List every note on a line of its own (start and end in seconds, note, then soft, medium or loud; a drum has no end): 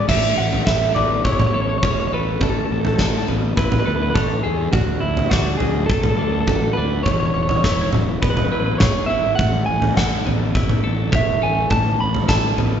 0.08 0.33 A1 medium
0.08 2.41 A3 soft
0.08 0.36 E5 medium
0.08 kick medium
0.08 floor tom medium
0.08 crash medium
0.38 0.62 A1 medium
0.38 0.65 F#5 medium
0.53 floor tom medium
0.66 0.91 A1 medium
0.66 1.54 A4 medium
0.66 0.94 E5 medium
0.66 kick medium
0.66 snare medium
0.95 1.20 A1 medium
0.95 2.42 B3 soft
0.95 1.24 D5 medium
0.95 floor tom medium
1.24 1.49 F#1 medium
1.24 2.70 E4 medium
1.24 1.32 C#5 medium
1.24 kick medium
1.32 1.39 C#5 medium
1.39 1.46 C#5 medium
1.39 floor tom medium
1.39 mid tom medium
1.47 1.54 C#5 medium
1.54 1.79 A1 medium
1.54 2.13 A4 soft
1.54 1.61 C#5 medium
1.62 1.69 C#5 medium
1.69 1.77 C#5 medium
1.78 1.84 C#5 medium
1.83 2.07 E1 medium
1.83 3.29 C#5 medium
1.83 1.92 C#5 medium
1.83 kick medium
1.83 floor tom medium
1.92 2.00 C#5 medium
2.00 2.07 C#5 medium
2.07 2.14 C#5 medium
2.12 2.36 A1 medium
2.12 3.00 A4 medium
2.12 2.43 B4 medium
2.41 2.65 A1 medium
2.41 3.87 A3 medium
2.41 2.49 A4 medium
2.41 kick medium
2.41 floor tom medium
2.50 2.57 A4 soft
2.59 2.65 A4 soft
2.65 2.72 A4 soft
2.70 2.94 A1 medium
2.70 2.80 A4 soft
2.80 2.87 A4 soft
2.85 2.95 A4 medium
2.85 floor tom medium
2.95 3.02 A4 soft
2.95 snare medium
2.99 3.23 A1 medium
2.99 3.84 A4 medium
2.99 3.10 A4 medium
2.99 kick medium
3.10 3.18 A4 soft
3.18 3.26 A4 soft
3.28 3.53 A1 medium
3.28 4.74 B3 medium
3.28 floor tom medium
3.57 3.81 A1 medium
3.57 4.74 E4 medium
3.57 3.65 B4 medium
3.57 kick loud
3.65 3.72 B4 medium
3.72 3.79 B4 medium
3.72 floor tom medium
3.72 mid tom medium
3.80 3.86 B4 medium
3.86 4.11 D2 medium
3.86 4.43 A4 medium
3.86 3.94 B4 medium
3.96 4.02 B4 medium
4.02 4.10 B4 medium
4.10 4.18 B4 medium
4.14 4.40 A1 medium
4.14 4.42 A4 medium
4.14 4.74 C#5 medium
4.14 kick medium
4.14 floor tom medium
4.43 4.69 E2 medium
4.43 4.71 G#4 medium
4.43 4.73 A4 medium
4.72 4.97 D2 medium
4.72 6.18 D3 medium
4.72 5.00 F#4 medium
4.72 kick medium
4.72 floor tom medium
5.00 5.27 D2 medium
5.00 5.29 E4 medium
5.17 floor tom medium
5.30 5.56 D2 medium
5.30 6.18 D4 medium
5.30 5.57 F#4 medium
5.30 kick medium
5.30 snare medium
5.57 5.85 D2 medium
5.57 7.06 F#3 medium
5.57 5.86 G#4 medium
5.57 floor tom medium
5.86 6.14 B1 medium
5.86 7.06 A3 medium
5.86 5.93 A4 medium
5.86 kick medium
5.93 6.01 A4 medium
6.02 6.09 A4 medium
6.02 floor tom medium
6.02 mid tom medium
6.09 6.16 A4 medium
6.17 6.43 D2 medium
6.17 6.76 D4 medium
6.17 6.24 A4 medium
6.24 6.32 A4 medium
6.32 6.40 A4 medium
6.41 6.48 A4 medium
6.47 6.72 A1 medium
6.47 7.06 F#4 medium
6.47 6.55 A4 medium
6.47 kick medium
6.47 floor tom medium
6.56 6.63 A4 medium
6.64 6.72 A4 medium
6.73 7.03 B4 medium
6.77 7.02 D2 medium
6.77 7.06 D4 medium
7.03 7.30 E1 medium
7.03 10.56 E3 medium
7.03 7.11 C#5 medium
7.03 kick medium
7.03 floor tom medium
7.12 7.19 C#5 medium
7.20 7.26 C#5 medium
7.27 7.34 C#5 medium
7.34 7.59 E1 medium
7.34 7.42 C#5 medium
7.43 7.49 C#5 medium
7.49 7.56 C#5 medium
7.49 floor tom medium
7.57 7.64 C#5 medium
7.64 7.88 E1 medium
7.64 8.51 E4 medium
7.64 7.72 C#5 medium
7.64 kick medium
7.64 snare medium
7.72 7.80 C#5 medium
7.81 7.89 C#5 medium
7.93 8.17 E1 medium
7.93 9.38 F#3 soft
7.93 floor tom medium
7.93 mid tom medium
8.22 8.47 E1 medium
8.22 9.42 B3 medium
8.22 8.29 B4 medium
8.22 kick medium
8.30 8.36 B4 medium
8.37 8.44 B4 medium
8.37 floor tom medium
8.37 mid tom medium
8.44 8.52 B4 medium
8.52 8.75 A1 medium
8.52 9.09 E4 medium
8.52 8.59 B4 medium
8.60 8.66 B4 medium
8.66 8.74 B4 medium
8.75 8.78 B4 soft
8.75 9.06 C#5 medium
8.80 9.05 E1 medium
8.80 9.39 G#4 medium
8.80 kick medium
8.80 snare medium
8.80 floor tom medium
8.80 mid tom medium
9.06 10.55 E4 medium
9.06 9.35 E5 medium
9.11 9.35 G#1 medium
9.35 11.71 A3 medium
9.35 9.65 F#5 medium
9.35 kick medium
9.35 floor tom medium
9.39 9.63 A1 medium
9.66 9.92 A1 medium
9.66 9.96 G#5 medium
9.82 floor tom medium
9.97 10.21 A1 medium
9.97 10.83 A4 medium
9.97 10.24 F#5 medium
9.97 kick medium
9.97 snare medium
10.26 10.50 A1 medium
10.26 11.71 B3 medium
10.26 floor tom medium
10.55 10.79 F#1 medium
10.55 12.00 E4 medium
10.55 kick loud
10.69 floor tom medium
10.69 mid tom medium
10.84 11.09 A1 medium
10.84 11.42 A4 medium
11.12 11.37 E1 medium
11.12 12.58 C#5 medium
11.12 11.41 E5 medium
11.12 kick medium
11.12 floor tom medium
11.42 11.66 A1 medium
11.42 12.28 A4 medium
11.42 11.70 G#5 medium
11.70 11.95 A1 medium
11.70 12.80 A3 medium
11.70 12.00 A5 medium
11.70 kick medium
11.70 floor tom medium
12.00 12.24 A1 medium
12.00 12.28 B5 medium
12.14 floor tom medium
12.28 12.53 A1 medium
12.28 12.80 A4 medium
12.28 12.56 A5 medium
12.28 kick medium
12.28 snare medium
12.58 12.80 A1 medium
12.58 12.80 B3 medium
12.58 floor tom medium